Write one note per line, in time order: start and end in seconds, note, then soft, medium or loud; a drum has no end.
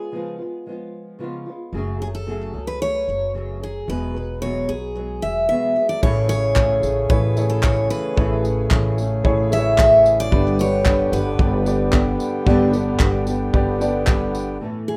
0.00 0.11 G#3 soft
0.00 0.12 B3 soft
0.00 0.11 F4 soft
0.00 0.35 G#4 medium
0.12 0.39 C#3 medium
0.12 0.39 F3 medium
0.12 0.39 G#3 medium
0.12 0.38 B3 medium
0.12 0.37 F4 medium
0.38 0.66 G#3 soft
0.38 0.66 B3 soft
0.38 0.65 F4 soft
0.66 1.18 F3 medium
0.66 1.19 G#3 medium
0.66 1.19 B3 medium
0.66 1.20 F4 medium
1.19 1.46 C#3 medium
1.19 1.46 F3 medium
1.19 1.46 G#3 medium
1.19 1.46 B3 medium
1.19 1.45 F4 medium
1.46 1.74 G#3 soft
1.46 1.74 B3 soft
1.46 1.73 F4 soft
1.73 2.49 F#1 medium
1.73 2.00 F#2 medium
1.73 2.00 C#3 medium
1.73 2.00 F#3 medium
1.73 2.01 A3 medium
1.73 2.00 C#4 medium
1.73 1.99 G#4 medium
2.00 2.26 F#3 soft
2.00 2.26 A3 soft
2.00 2.27 C#4 soft
2.00 2.27 G#4 soft
2.00 2.07 G#4 medium
2.15 2.67 A4 medium
2.27 2.54 F#2 medium
2.27 2.54 C#3 medium
2.27 2.54 F#3 medium
2.27 2.54 A3 medium
2.27 2.53 C#4 medium
2.27 2.52 G#4 medium
2.53 3.03 C#2 medium
2.53 2.79 F#3 soft
2.53 2.80 A3 soft
2.53 2.81 C#4 soft
2.53 2.80 G#4 soft
2.67 2.81 B4 medium
2.80 3.34 F#3 soft
2.80 3.34 A3 soft
2.80 3.34 C#4 medium
2.80 3.35 G#4 medium
2.80 3.31 C#5 medium
3.08 3.84 F#1 medium
3.34 3.61 F#2 medium
3.34 3.61 C#3 medium
3.34 3.61 F#3 medium
3.34 3.61 A3 medium
3.34 3.60 C#4 medium
3.34 3.59 G#4 medium
3.60 3.87 F#3 soft
3.60 3.88 A3 soft
3.60 3.88 C#4 soft
3.60 3.87 G#4 soft
3.60 3.87 G#4 medium
3.88 4.65 E1 medium
3.88 4.15 E2 medium
3.88 4.15 B2 medium
3.88 4.15 F#3 medium
3.88 4.15 G#3 medium
3.88 4.14 B3 medium
3.88 4.13 G#4 medium
3.88 4.41 B4 medium
4.15 4.41 F#3 soft
4.15 4.41 G#3 soft
4.15 4.42 B3 soft
4.15 4.42 G#4 soft
4.41 4.68 E2 medium
4.41 4.68 B2 medium
4.41 4.69 F#3 medium
4.41 4.69 G#3 medium
4.41 4.68 B3 medium
4.41 4.67 G#4 medium
4.41 4.69 C#5 medium
4.68 5.18 B1 medium
4.68 4.94 F#3 soft
4.68 4.95 G#3 soft
4.68 4.96 B3 soft
4.68 4.95 G#4 soft
4.68 5.45 G#4 medium
4.95 5.49 F#3 medium
4.95 5.50 G#3 soft
4.95 5.49 B3 medium
4.95 5.51 G#4 soft
5.22 5.47 E1 medium
5.22 5.48 E5 medium
5.49 5.76 E2 medium
5.49 5.76 B2 medium
5.49 5.76 F#3 medium
5.49 5.76 G#3 medium
5.49 5.76 B3 medium
5.49 5.75 G#4 medium
5.49 5.86 E5 medium
5.76 6.02 F#3 soft
5.76 6.03 G#3 soft
5.76 6.03 B3 soft
5.76 6.03 G#4 soft
5.89 6.03 D5 medium
6.02 6.79 A1 loud
6.02 6.29 A2 medium
6.02 10.28 C#3 medium
6.02 6.29 E3 medium
6.02 6.94 A3 medium
6.02 10.28 A3 medium
6.02 6.30 A3 medium
6.02 6.29 C#4 medium
6.02 6.94 E4 medium
6.02 10.28 G#4 medium
6.02 6.94 G#4 medium
6.02 6.27 G#4 medium
6.02 6.28 C#5 medium
6.02 6.95 C#5 medium
6.02 kick loud
6.28 6.55 A3 soft
6.28 6.56 C#4 soft
6.28 6.56 G#4 medium
6.28 7.09 C#5 loud
6.28 tambourine medium
6.55 6.83 E3 medium
6.55 6.83 A3 medium
6.55 6.82 C#4 medium
6.55 6.81 G#4 medium
6.55 kick loud
6.55 clap loud
6.55 clap medium
6.82 7.08 A1 medium
6.82 7.37 A3 soft
6.82 7.35 C#4 soft
6.82 7.34 G#4 soft
6.82 tambourine medium
7.09 7.87 A1 loud
7.09 7.33 A3 medium
7.09 7.33 E4 medium
7.09 7.33 G#4 medium
7.09 7.51 B4 medium
7.09 7.34 C#5 medium
7.09 kick loud
7.35 8.05 A3 medium
7.35 7.61 A3 soft
7.35 7.62 C#4 medium
7.35 8.06 E4 medium
7.35 7.63 G#4 soft
7.35 8.06 G#4 medium
7.35 8.06 C#5 medium
7.35 tambourine medium
7.50 7.62 A4 medium
7.62 8.15 E3 medium
7.62 8.16 A3 medium
7.62 8.16 C#4 medium
7.62 8.17 G#4 medium
7.62 7.90 C#5 medium
7.62 kick loud
7.62 clap loud
7.62 clap medium
7.90 8.67 B4 medium
7.90 tambourine medium
8.16 8.67 A1 loud
8.16 8.43 A2 medium
8.16 8.44 E3 medium
8.16 9.08 A3 medium
8.16 8.44 A3 medium
8.16 8.44 C#4 medium
8.16 9.09 E4 medium
8.16 9.09 G#4 medium
8.16 8.42 G#4 medium
8.16 9.09 C#5 medium
8.16 kick loud
8.43 8.70 A3 soft
8.43 8.71 C#4 medium
8.43 8.71 G#4 medium
8.43 tambourine medium
8.70 9.21 A1 loud
8.70 8.97 E3 medium
8.70 8.98 A3 medium
8.70 8.98 C#4 medium
8.70 8.96 G#4 medium
8.70 kick loud
8.70 clap loud
8.70 clap medium
8.97 9.52 A3 soft
8.97 9.51 C#4 medium
8.97 9.50 G#4 medium
8.97 tambourine medium
9.24 10.28 A1 loud
9.24 9.47 A3 medium
9.24 9.47 E4 medium
9.24 9.48 G#4 medium
9.24 9.48 C#5 loud
9.24 kick loud
9.51 10.20 A3 medium
9.51 9.77 A3 soft
9.51 9.79 C#4 soft
9.51 10.20 E4 medium
9.51 9.78 G#4 soft
9.51 10.21 G#4 medium
9.51 9.59 B4 medium
9.51 9.79 E5 loud
9.51 tambourine medium
9.59 10.24 C#5 medium
9.78 10.32 E3 medium
9.78 10.32 A3 medium
9.78 10.32 C#4 medium
9.78 10.33 G#4 medium
9.78 10.20 E5 loud
9.78 kick loud
9.78 clap loud
9.78 clap medium
10.06 tambourine medium
10.20 10.60 D5 loud
10.31 11.09 G1 loud
10.31 10.58 G2 medium
10.31 10.59 D3 medium
10.31 14.58 D3 medium
10.31 10.59 G3 medium
10.31 11.23 B3 medium
10.31 10.59 B3 medium
10.31 14.58 B3 medium
10.31 11.23 D4 medium
10.31 10.58 D4 medium
10.31 11.24 G4 medium
10.31 14.58 G4 medium
10.31 10.57 G4 medium
10.31 11.24 B4 medium
10.31 kick loud
10.58 10.84 G3 soft
10.58 10.85 B3 soft
10.58 10.85 D4 medium
10.58 10.85 G4 medium
10.58 11.10 C#5 loud
10.58 tambourine medium
10.85 11.12 G3 medium
10.85 11.12 B3 medium
10.85 11.11 D4 medium
10.85 11.10 G4 medium
10.85 kick loud
10.85 clap loud
10.85 clap medium
11.12 11.37 G1 loud
11.12 11.67 G3 soft
11.12 11.66 B3 soft
11.12 11.65 D4 soft
11.12 11.64 G4 soft
11.12 14.04 B4 medium
11.12 tambourine medium
11.39 12.16 G1 loud
11.39 11.62 B3 medium
11.39 11.62 D4 medium
11.39 11.63 G4 medium
11.39 11.63 D5 medium
11.39 kick loud
11.65 11.90 G3 soft
11.65 12.35 B3 medium
11.65 11.91 B3 soft
11.65 12.35 D4 medium
11.65 11.92 D4 soft
11.65 11.93 G4 medium
11.65 12.35 G4 medium
11.65 12.36 D5 medium
11.65 tambourine medium
11.91 12.45 G3 medium
11.91 12.45 B3 medium
11.91 12.46 D4 medium
11.91 12.47 G4 medium
11.91 kick loud
11.91 clap loud
11.91 clap medium
12.20 tambourine medium
12.46 12.96 G1 loud
12.46 12.73 G2 loud
12.46 12.73 D3 medium
12.46 12.73 G3 loud
12.46 13.38 B3 medium
12.46 12.73 B3 loud
12.46 13.38 D4 medium
12.46 12.72 D4 loud
12.46 13.39 G4 medium
12.46 12.71 G4 medium
12.46 13.39 D5 loud
12.46 kick loud
12.72 12.99 G3 medium
12.72 12.99 B3 medium
12.72 13.00 D4 medium
12.72 13.00 G4 medium
12.72 tambourine medium
12.99 13.50 G1 medium
12.99 13.27 G3 medium
12.99 13.27 B3 medium
12.99 13.26 D4 medium
12.99 13.25 G4 medium
12.99 kick loud
12.99 clap loud
12.99 clap medium
13.26 13.82 G3 soft
13.26 13.81 B3 medium
13.26 13.80 D4 soft
13.26 13.79 G4 medium
13.26 tambourine medium
13.53 14.57 G1 medium
13.53 13.77 B3 medium
13.53 13.77 D4 medium
13.53 13.77 G4 medium
13.53 13.78 D5 loud
13.53 kick loud
13.80 14.05 G3 soft
13.80 14.49 B3 medium
13.80 14.06 B3 medium
13.80 14.50 D4 medium
13.80 14.07 D4 soft
13.80 14.07 G4 medium
13.80 14.50 G4 medium
13.80 14.50 D5 medium
13.80 tambourine medium
14.06 14.60 G3 medium
14.06 14.61 B3 medium
14.06 14.61 D4 medium
14.06 14.62 G4 medium
14.06 kick loud
14.06 clap loud
14.06 clap medium
14.35 tambourine medium
14.60 14.97 A2 medium
14.60 14.97 E3 medium
14.60 14.97 A3 medium
14.60 14.97 C#4 medium
14.60 14.97 A4 medium
14.88 14.97 G#4 medium